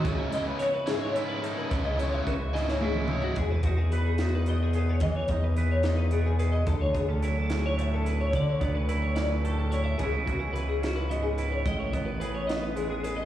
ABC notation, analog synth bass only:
X:1
M:6/8
L:1/8
Q:3/8=72
K:E
V:1 name="Analog synth bass" clef=bass
C,, z4 z | C,,2 C,,4 | E,, E,,4- E,, | E, E,,4- E,, |
=D,, D,,4- D,, | =D, =D,,4- D,, | C,, C,,4- C,, | A,,, A,,,4- A,,, |]